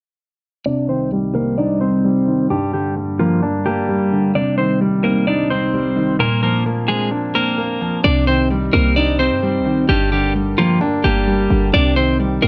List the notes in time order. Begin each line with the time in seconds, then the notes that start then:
0.66 C2 C3 G3 D4 D#4 D5
0.89 D#3 C4 C5
1.12 G3
1.35 A#3 C4 A#4
1.58 D4 D#4 D5
1.81 C4 C5
2.04 G3
2.27 D#3
2.50 G2 G3 A#3 D4 G4
2.73 D3 G3 G4
2.96 G3
3.19 F3 A#3 F4
3.42 D4
3.66 G3 A#3 G4
3.89 G3
4.12 D3
4.35 C2 C3 D4 D#4 D5
4.58 D#3 C4 C5
4.81 G3
5.04 A#3 C4 A#4
5.27 D4 D#4 D5
5.50 C4 C5
5.74 G3
5.96 D#3
6.19 A#2 F3 A#3 C4 D4 A#4
6.43 F3 A#3 A#4
6.66 A#3
6.88 G#3 C4 G#4
7.11 D4
7.35 A#3 C4 A#4
7.58 A#3
7.81 F3
8.04 C2 C3 C4 D4 D#4 G4 D5 D#5
8.27 D#3 C4 C5
8.51 G3
8.73 C2 A#3 C4 A#4
8.96 D4 D#4 D5
9.19 C4 C5
9.31 G2
9.43 G3
9.60 C2
9.66 D#3
9.89 G1 G2 G3 D4 G4 A#4 G5
10.12 D3 G3 G4
10.35 G3
10.58 F3 A#3 F4
10.81 D4
11.04 G1 G3 A#3 G4
11.27 G3
11.50 G1 D3
11.73 C2 C3 D4 D#4 C5 D5
11.96 D#3 C4 C5
12.19 G3
12.42 C2 A#3 C4 A#4